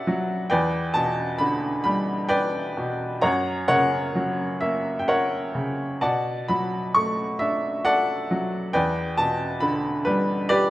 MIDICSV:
0, 0, Header, 1, 2, 480
1, 0, Start_track
1, 0, Tempo, 896861
1, 267, Time_signature, 6, 3, 24, 8
1, 1233, Tempo, 924499
1, 4113, Tempo, 878477
1, 5670, End_track
2, 0, Start_track
2, 0, Title_t, "Upright piano"
2, 0, Program_c, 0, 0
2, 0, Control_c, 0, 64, 127
2, 0, Note_on_c, 0, 47, 59
2, 0, Note_on_c, 0, 55, 46
2, 0, Note_on_c, 0, 59, 52
2, 0, Note_on_c, 0, 62, 50
2, 0, Note_on_c, 0, 67, 66
2, 0, Note_on_c, 0, 74, 65
2, 0, Note_on_c, 0, 76, 80
2, 0, Note_on_c, 0, 78, 88
2, 39, Note_on_c, 0, 54, 54
2, 247, Note_off_c, 0, 47, 0
2, 247, Note_off_c, 0, 59, 0
2, 247, Note_off_c, 0, 74, 0
2, 249, Note_off_c, 0, 62, 0
2, 263, Note_off_c, 0, 54, 0
2, 266, Note_on_c, 0, 79, 88
2, 271, Note_on_c, 0, 71, 60
2, 272, Note_on_c, 0, 74, 64
2, 273, Control_c, 0, 64, 0
2, 274, Note_off_c, 0, 55, 0
2, 276, Note_off_c, 0, 67, 0
2, 276, Note_on_c, 0, 40, 65
2, 277, Note_off_c, 0, 76, 0
2, 281, Note_off_c, 0, 78, 0
2, 360, Control_c, 0, 64, 127
2, 502, Note_on_c, 0, 81, 96
2, 510, Note_off_c, 0, 79, 0
2, 511, Note_on_c, 0, 47, 54
2, 726, Note_off_c, 0, 81, 0
2, 741, Note_on_c, 0, 83, 86
2, 752, Note_on_c, 0, 50, 50
2, 968, Note_off_c, 0, 71, 0
2, 968, Note_off_c, 0, 74, 0
2, 969, Note_off_c, 0, 83, 0
2, 984, Note_on_c, 0, 83, 80
2, 992, Note_on_c, 0, 55, 55
2, 1214, Note_off_c, 0, 83, 0
2, 1223, Note_on_c, 0, 79, 88
2, 1226, Note_on_c, 0, 74, 67
2, 1227, Note_on_c, 0, 71, 61
2, 1454, Note_off_c, 0, 47, 0
2, 1476, Note_on_c, 0, 47, 49
2, 1688, Note_off_c, 0, 71, 0
2, 1688, Note_off_c, 0, 74, 0
2, 1693, Note_off_c, 0, 55, 0
2, 1695, Note_off_c, 0, 40, 0
2, 1695, Note_off_c, 0, 50, 0
2, 1706, Note_off_c, 0, 47, 0
2, 1706, Note_on_c, 0, 82, 81
2, 1709, Note_on_c, 0, 73, 59
2, 1709, Note_on_c, 0, 78, 64
2, 1714, Note_on_c, 0, 42, 63
2, 1717, Control_c, 0, 64, 0
2, 1722, Note_off_c, 0, 79, 0
2, 1812, Control_c, 0, 64, 127
2, 1932, Note_off_c, 0, 82, 0
2, 1940, Note_off_c, 0, 78, 0
2, 1942, Note_off_c, 0, 73, 0
2, 1948, Note_on_c, 0, 78, 98
2, 1949, Note_on_c, 0, 73, 65
2, 1952, Note_on_c, 0, 49, 42
2, 1952, Note_on_c, 0, 70, 63
2, 2193, Note_on_c, 0, 54, 43
2, 2408, Note_off_c, 0, 78, 0
2, 2428, Note_on_c, 0, 76, 73
2, 2432, Note_on_c, 0, 58, 45
2, 2629, Note_on_c, 0, 79, 61
2, 2640, Note_off_c, 0, 76, 0
2, 2650, Note_off_c, 0, 73, 0
2, 2651, Note_off_c, 0, 70, 0
2, 2669, Note_off_c, 0, 79, 0
2, 2674, Note_on_c, 0, 78, 76
2, 2675, Note_on_c, 0, 70, 56
2, 2678, Note_on_c, 0, 73, 58
2, 2893, Note_off_c, 0, 49, 0
2, 2917, Note_on_c, 0, 49, 44
2, 3139, Note_off_c, 0, 54, 0
2, 3139, Note_off_c, 0, 58, 0
2, 3140, Note_off_c, 0, 42, 0
2, 3140, Note_off_c, 0, 70, 0
2, 3141, Note_off_c, 0, 73, 0
2, 3153, Note_off_c, 0, 49, 0
2, 3153, Note_off_c, 0, 78, 0
2, 3158, Note_on_c, 0, 81, 75
2, 3159, Note_on_c, 0, 74, 58
2, 3161, Note_on_c, 0, 78, 52
2, 3163, Note_on_c, 0, 47, 57
2, 3165, Control_c, 0, 64, 0
2, 3252, Control_c, 0, 64, 127
2, 3386, Note_off_c, 0, 81, 0
2, 3404, Note_on_c, 0, 83, 79
2, 3408, Note_on_c, 0, 54, 39
2, 3643, Note_on_c, 0, 85, 88
2, 3651, Note_off_c, 0, 83, 0
2, 3651, Note_on_c, 0, 57, 45
2, 3859, Note_off_c, 0, 74, 0
2, 3860, Note_off_c, 0, 78, 0
2, 3875, Note_on_c, 0, 76, 78
2, 3883, Note_on_c, 0, 62, 47
2, 3887, Note_off_c, 0, 85, 0
2, 4094, Note_off_c, 0, 76, 0
2, 4111, Note_on_c, 0, 78, 100
2, 4113, Note_on_c, 0, 74, 66
2, 4114, Note_on_c, 0, 69, 57
2, 4338, Note_off_c, 0, 54, 0
2, 4363, Note_on_c, 0, 54, 51
2, 4574, Note_off_c, 0, 78, 0
2, 4576, Note_off_c, 0, 69, 0
2, 4576, Note_off_c, 0, 74, 0
2, 4578, Note_off_c, 0, 47, 0
2, 4578, Note_off_c, 0, 62, 0
2, 4580, Note_off_c, 0, 57, 0
2, 4593, Note_off_c, 0, 54, 0
2, 4595, Note_on_c, 0, 79, 86
2, 4597, Note_on_c, 0, 71, 62
2, 4597, Note_on_c, 0, 74, 60
2, 4603, Note_on_c, 0, 40, 64
2, 4604, Control_c, 0, 64, 0
2, 4706, Control_c, 0, 64, 127
2, 4819, Note_off_c, 0, 79, 0
2, 4837, Note_on_c, 0, 81, 97
2, 4841, Note_on_c, 0, 47, 45
2, 5071, Note_on_c, 0, 83, 82
2, 5080, Note_on_c, 0, 50, 54
2, 5084, Note_off_c, 0, 81, 0
2, 5294, Note_off_c, 0, 71, 0
2, 5294, Note_off_c, 0, 74, 0
2, 5297, Note_off_c, 0, 83, 0
2, 5314, Note_on_c, 0, 71, 77
2, 5323, Note_on_c, 0, 55, 55
2, 5552, Note_off_c, 0, 71, 0
2, 5555, Note_on_c, 0, 74, 94
2, 5558, Note_on_c, 0, 67, 68
2, 5560, Note_on_c, 0, 71, 65
2, 5670, Note_off_c, 0, 40, 0
2, 5670, Note_off_c, 0, 47, 0
2, 5670, Note_off_c, 0, 50, 0
2, 5670, Note_off_c, 0, 55, 0
2, 5670, Note_off_c, 0, 67, 0
2, 5670, Note_off_c, 0, 71, 0
2, 5670, Note_off_c, 0, 74, 0
2, 5670, End_track
0, 0, End_of_file